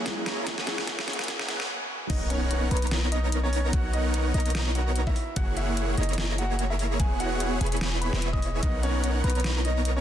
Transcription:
Already playing: F#3 A#3 C#4 E4 G#4 C#5 F#5, riser
0.06 kick, snare, closed hi-hat
0.16 F#3 A#3 C#4 E4 G#4
0.26 A#3 E4 G#4 C#5 A#5, snare, closed hi-hat
0.47 A#3 E4 G#4 C#5, kick, snare, closed hi-hat
0.58 snare
0.66 F#3 A#3 C#4 E4 G#4, snare, closed hi-hat
0.78 snare
0.87 A#3 E4 G#4 C#5, kick, snare, closed hi-hat
0.99 snare
1.07 F#3 A#3 C#4 E4 G#4, snare, closed hi-hat
1.13 closed hi-hat
1.19 snare, closed hi-hat
1.24 F#3, closed hi-hat
1.28 A#3 C#4 E4 G#4 C#5 F#5, kick, snare, closed hi-hat
1.39 snare
1.48 F#3 A#3 C#4 E4 G#4 C#5 F#5, snare, closed hi-hat
1.60 snare
2.10 B1 B3 D#4 A#4 C#5 D#5 F#5, kick, closed hi-hat, crash, impact
2.30 C#4 C#5, closed hi-hat
2.51 closed hi-hat
2.71 B1 B3 D#4 A#4 B4 C#5 A#5, closed hi-hat
2.77 closed hi-hat
2.82 closed hi-hat
2.87 closed hi-hat
2.91 snare, closed hi-hat
3.12 D#4 D#5, closed hi-hat
3.32 closed hi-hat
3.43 C#4 C#5
3.53 open hi-hat
3.73 B1 F#4 F#5, kick, closed hi-hat
3.93 D#4 D#5, closed hi-hat
4.14 closed hi-hat
4.34 B1 B3 D#4 A#4 C#5 D#5 A#5, closed hi-hat
4.40 closed hi-hat
4.46 closed hi-hat
4.50 closed hi-hat
4.55 snare, closed hi-hat
4.75 F#4 F#5, closed hi-hat
4.96 closed hi-hat
5.07 E4 E5, kick
5.16 open hi-hat
5.36 F#1 A#3 E4 F#4 G#4 C#5 F#5, kick, closed hi-hat
5.57 E4 E5, closed hi-hat
5.77 closed hi-hat
5.97 F#1 A#3 D#4 E4 G#4 C#5 D#5 A#5, closed hi-hat
6.03 closed hi-hat
6.09 closed hi-hat
6.13 closed hi-hat
6.18 snare
6.38 F#4 F#5, closed hi-hat
6.59 closed hi-hat
6.70 E4 E5
6.79 open hi-hat
7.00 E1 B3 E4 G#4 C#5 F#5 G#5, kick, closed hi-hat
7.20 F#4 F#5, closed hi-hat
7.40 closed hi-hat
7.61 E1 B3 E4 G#4 C#5 G#5 B5, closed hi-hat
7.66 closed hi-hat
7.72 closed hi-hat
7.77 closed hi-hat
7.81 snare, closed hi-hat
8.01 B4 B5, closed hi-hat
8.13 E1 B3 E4 G#4 C#5 E5, snare
8.22 closed hi-hat
8.33 D#5 D#6, kick
8.42 open hi-hat
8.62 B1 B3 D#4 D#5, kick, closed hi-hat
8.83 C#4 C#5, closed hi-hat
9.04 closed hi-hat
9.24 B1 B3 D#4 A#4 B4 C#5 A#5, closed hi-hat
9.30 closed hi-hat
9.35 closed hi-hat
9.40 closed hi-hat
9.44 snare, closed hi-hat
9.65 D#4 D#5, closed hi-hat
9.85 closed hi-hat
9.97 C#4 C#5

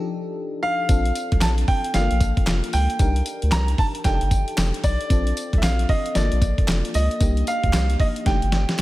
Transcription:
Already playing: F3 D4 D#4 G4 A4
0.63 F5
0.89 A#1 C4 D4 F4 A4, kick, closed hi-hat, tambourine
1.05 closed hi-hat
1.15 closed hi-hat, tambourine
1.32 C2, kick, closed hi-hat
1.41 A#1 A5, snare, clap, closed hi-hat, tambourine
1.58 closed hi-hat
1.68 G5, kick, open hi-hat
1.84 closed hi-hat
1.94 G1 A3 D4 F4 A4 F5, snare, closed hi-hat, tambourine
2.00 A#3
2.11 A#1, closed hi-hat
2.21 kick, closed hi-hat, tambourine
2.37 kick, closed hi-hat
2.47 F1, snare, clap, closed hi-hat, tambourine
2.64 closed hi-hat
2.73 C#2 G5, open hi-hat, tambourine
2.90 closed hi-hat
2.99 C2 D4 D#4 G4 A#4, kick, closed hi-hat, tambourine
3.16 closed hi-hat
3.26 closed hi-hat, tambourine
3.42 D2, closed hi-hat
3.52 C2 A#5, snare, clap, closed hi-hat, tambourine
3.68 closed hi-hat
3.78 A5, kick, open hi-hat
3.95 closed hi-hat
4.04 F1 D4 D#4 G4 A4 G5, kick, snare, closed hi-hat, tambourine
4.21 G1, closed hi-hat
4.31 kick, closed hi-hat, tambourine
4.48 closed hi-hat
4.57 F1, snare, clap, closed hi-hat, tambourine
4.74 closed hi-hat
4.83 B1 D5, kick, open hi-hat, tambourine
5.01 closed hi-hat
5.10 A#1 C4 D4 F4 A4, kick, closed hi-hat, tambourine
5.27 closed hi-hat
5.37 closed hi-hat, tambourine
5.53 C2, kick, closed hi-hat
5.58 E5
5.63 A#1 F5, snare, clap, closed hi-hat, tambourine
5.79 closed hi-hat
5.89 D#5, kick, open hi-hat
6.06 closed hi-hat
6.15 G1 A#3 D4 F4 A4 D5, snare, closed hi-hat, tambourine
6.32 A#1, closed hi-hat
6.42 kick, closed hi-hat, tambourine
6.58 kick, closed hi-hat
6.68 F1, snare, clap, closed hi-hat, tambourine
6.85 closed hi-hat
6.94 C#2 D#5, open hi-hat, tambourine
7.11 closed hi-hat
7.20 C2 A#3 D4 D#4 G4, kick, closed hi-hat, tambourine
7.37 closed hi-hat
7.47 F5, closed hi-hat, tambourine
7.63 D2, kick, closed hi-hat
7.73 C2, snare, clap, closed hi-hat, tambourine
7.90 closed hi-hat
8.00 D#5, kick, open hi-hat
8.16 closed hi-hat
8.25 F1 A3 D4 D#4 G4 G5, kick, snare, closed hi-hat
8.42 G1, closed hi-hat
8.52 snare, closed hi-hat
8.69 snare, closed hi-hat

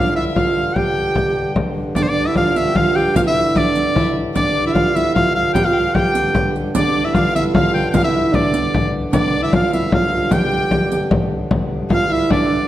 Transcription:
Already playing: G2 D3 F4 F5
0.16 E4 E5
0.35 F4 F5, frame drum
0.57 frame drum
0.76 G4 G5, frame drum
1.15 frame drum
1.35 frame drum
1.56 frame drum
1.95 G2 D3 D4 D5, riq, frame drum
2.03 C5
2.10 D4 D5
2.27 E4 E5
2.36 F4 F5, riq, frame drum
2.56 E5, riq
2.69 G5
2.75 F4 F5, frame drum
2.95 G4 G5, frame drum
3.14 F4 F5, riq, frame drum
3.25 E4 E5
3.55 D4 D5, riq, frame drum
3.75 riq
3.95 E4 E5, frame drum
4.16 frame drum
4.34 D4 D5, riq, frame drum
4.66 E4 E5
4.74 F4 F5, riq, frame drum
4.95 E4 E5, riq
5.14 F4 F5, frame drum
5.35 F4 F5, frame drum
5.54 G4 G5, riq, frame drum
5.64 F4 F5
5.73 G5
5.78 F5
5.94 G4 G5, frame drum
6.15 riq
6.35 riq, frame drum
6.55 riq, frame drum
6.74 G2 D3 D4 D5, riq, frame drum
7.04 E4 E5
7.14 F4 F5, riq, frame drum
7.35 E4 E5, riq
7.53 F4 F5, frame drum
7.74 G5, frame drum
7.90 F4 F5 G5, riq
7.95 F5, frame drum
8.02 E4 E5
8.32 D4 D5, riq, frame drum
8.54 riq
8.74 frame drum
8.94 frame drum
9.12 D4 D5, riq, frame drum
9.42 E4 E5
9.52 F4 F5, riq, frame drum
9.73 E4 E5, riq
9.92 F4 F5, frame drum
10.12 F4, frame drum
10.31 G4 G5, riq, frame drum
10.52 riq
10.71 riq, frame drum
10.91 riq, frame drum
11.11 frame drum
11.51 G2 D3, frame drum
11.71 frame drum
11.90 F4 F5, frame drum
11.94 F5
12.10 E4 E5
12.15 F5
12.19 E5
12.31 D4 D5, frame drum
12.51 frame drum

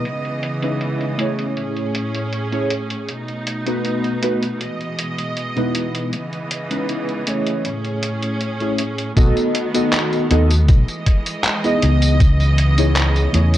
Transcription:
Already playing: D#5
0.04 C#3 E3 B3, closed hi-hat
0.25 closed hi-hat
0.43 closed hi-hat
0.62 G#3 C#4 D#4 E4 B4, closed hi-hat
0.81 closed hi-hat
1.01 closed hi-hat
1.18 A3 C#4 E4 G#4 C#5, closed hi-hat
1.39 closed hi-hat
1.57 A2 C#4 G#4, closed hi-hat
1.77 closed hi-hat
1.95 closed hi-hat
2.15 closed hi-hat
2.33 closed hi-hat
2.52 A3 C#4 E4 G#4 C#5, closed hi-hat
2.70 closed hi-hat
2.90 closed hi-hat
3.08 B2 A3 D#4, closed hi-hat
3.28 closed hi-hat
3.47 closed hi-hat
3.66 A3 B3 D#4 F#4 B4, closed hi-hat
3.85 closed hi-hat
4.04 closed hi-hat
4.22 A3 B3 D#4 F#4 B4, closed hi-hat
4.43 closed hi-hat
4.60 E3 G#3 D#5, closed hi-hat
4.81 closed hi-hat
4.99 closed hi-hat
5.18 closed hi-hat
5.37 closed hi-hat
5.56 B2 G#3 B3 D#4 E4 B4, closed hi-hat
5.75 closed hi-hat
5.95 closed hi-hat
6.12 C#3 E3 B3 D#5, closed hi-hat
6.33 closed hi-hat
6.51 closed hi-hat
6.70 G#3 C#4 D#4 E4 B4, closed hi-hat
6.89 closed hi-hat
7.09 closed hi-hat
7.26 A3 C#4 E4 G#4 C#5, closed hi-hat
7.46 closed hi-hat
7.65 A2 C#4 G#4, closed hi-hat
7.84 closed hi-hat
8.03 closed hi-hat
8.23 closed hi-hat
8.41 closed hi-hat
8.60 A3 C#4 E4 G#4 C#5, closed hi-hat
8.78 closed hi-hat
8.98 closed hi-hat
9.16 B1 D#3 A3 B3 D#4 F#4 A4 D#5, kick, closed hi-hat, tambourine
9.37 closed hi-hat, tambourine
9.55 closed hi-hat
9.74 B3 D#4 F#4 A4 D#5, closed hi-hat, tambourine
9.93 clap, closed hi-hat, tambourine
10.13 closed hi-hat, tambourine
10.30 D#2 B3 D#4 F#4 A4 D#5, closed hi-hat
10.50 closed hi-hat, tambourine
10.68 B1 E3 G#3 D#5, kick, closed hi-hat, tambourine
10.88 closed hi-hat, tambourine
11.06 kick, closed hi-hat
11.26 closed hi-hat, tambourine
11.44 clap, closed hi-hat, tambourine
11.64 B3 D#4 E4 G#4 D#5, closed hi-hat, tambourine
11.82 C#2, closed hi-hat
12.02 closed hi-hat, tambourine
12.20 C#3 E3 B3, kick, closed hi-hat, tambourine
12.40 closed hi-hat, tambourine
12.58 closed hi-hat
12.78 B3 D#4 E4 G#4 C#5, closed hi-hat, tambourine
12.96 clap, closed hi-hat, tambourine
13.16 closed hi-hat, tambourine
13.32 E2 A3 C#4 E4 G#4 C#5, closed hi-hat
13.54 closed hi-hat, tambourine

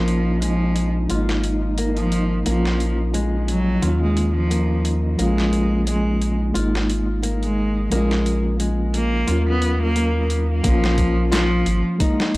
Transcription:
Already playing: A#1 F3 A#3 C#4 D#4 F4
0.08 closed hi-hat
0.41 F3 G#3, closed hi-hat
0.76 closed hi-hat
1.09 G#1 G#3 A#3 F4, closed hi-hat
1.15 D#4
1.29 snare
1.44 closed hi-hat
1.78 A#3, closed hi-hat
1.97 F3, closed hi-hat
2.12 closed hi-hat
2.45 A#1 F3 A#3, closed hi-hat
2.49 C#4 F4
2.65 snare
2.80 closed hi-hat
3.14 G#3, closed hi-hat
3.48 F#3, closed hi-hat
3.81 D#2 D#3 A#3 F4, closed hi-hat
3.85 C#4 F4
4.02 G#3
4.17 closed hi-hat
4.35 F3
4.50 A#3, closed hi-hat
4.85 closed hi-hat
5.16 A#1 F3 G#3 A#3, closed hi-hat
5.21 C#4 F4
5.38 snare
5.53 closed hi-hat
5.86 G#3, closed hi-hat
6.22 closed hi-hat
6.53 G#1 G#3 A#3 F4, closed hi-hat
6.59 D#4
6.75 snare
6.90 closed hi-hat
7.22 A#3, closed hi-hat
7.43 G#3, closed hi-hat
7.89 A#1 F3 G#3 A#3 C#4, closed hi-hat
7.95 F4
8.11 snare
8.26 closed hi-hat
8.59 G#3, closed hi-hat
8.94 A#3, closed hi-hat
9.26 D#2 F#3 F4 A#4, closed hi-hat
9.30 C#4 F4
9.50 B3
9.62 closed hi-hat
9.82 A#3
9.96 A#3, closed hi-hat
10.30 closed hi-hat
10.63 A#1 F3 A#3 C#4, kick, closed hi-hat
10.69 F4
10.84 snare
10.98 kick, closed hi-hat
11.32 F3 F4, snare, closed hi-hat
11.66 G#1, closed hi-hat
11.99 G#3 A#3 D#4, kick, closed hi-hat
12.04 D#4
12.20 snare
12.34 G#1

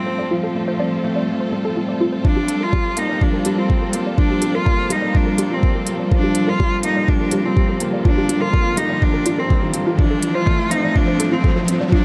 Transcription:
Already playing: F3 G3 A3 C4 F4 A4
0.06 C4
0.19 D5
0.30 F3 F4
0.44 A4
0.55 A3
0.68 C5
0.80 C4 D5
1.04 A3 F5
1.16 D5
1.28 F3
1.40 C5
1.52 A3 A4
1.65 A4
1.76 A3 F4
1.89 D5
2.00 C4 F4
2.12 C5
2.25 F3 D4 F4, kick, riser
2.36 G4
2.48 closed hi-hat
2.61 F4 A#4
2.73 G3 D5, kick
2.97 A#3 D#4 F5, closed hi-hat
3.09 D5
3.21 F3 D4, kick
3.34 A#4
3.45 G3 G4, closed hi-hat
3.58 C4 F4
3.70 G4, kick
3.82 A#4
3.93 A#3, closed hi-hat
4.07 D5
4.18 F3 D4 F4, kick
4.31 G4
4.42 G3, closed hi-hat
4.55 F4 A#4
4.66 A#3 D5, kick
4.90 G3 D#4 F5, closed hi-hat
5.02 D5
5.14 F3 D4, kick
5.27 A#4
5.38 G3 G4, closed hi-hat
5.51 C4 F4
5.63 A#3 G4, kick
5.75 A#4
5.87 F3, closed hi-hat
5.99 D5
6.11 F3 D4 F4, kick
6.24 G4
6.35 closed hi-hat
6.48 F4 A#4
6.60 G3 D5, kick
6.83 A#3 D#4 F5, closed hi-hat
6.97 D5
7.08 F3 D4, kick
7.20 A#4
7.31 G3 G4, closed hi-hat
7.44 C4 F4
7.57 G4, kick
7.69 A#4
7.80 A#3, closed hi-hat
7.93 D5
8.04 F3 D4 F4, kick
8.17 G4
8.29 G3, closed hi-hat
8.40 F4 A#4
8.53 A#3 D5, kick
8.77 G3 D#4 F5, closed hi-hat
8.90 D5
9.01 F3 D4, kick
9.14 A#4
9.25 D4 F4, closed hi-hat
9.38 C4 A#4
9.49 G3 G4, kick
9.63 A#4
9.74 F4, closed hi-hat
9.87 F4
9.98 F3 D4 F4, kick
10.11 A4
10.22 closed hi-hat
10.34 F4 C5
10.46 A3 D5, kick
10.71 C4 D#4 F5, closed hi-hat
10.84 D5
10.95 F3 D4, kick
11.08 C5
11.19 A3 A4, closed hi-hat
11.32 C4 F4
11.44 A4, kick
11.56 C5
11.68 C4, closed hi-hat
11.81 D5
11.92 F3 D4 F4, kick

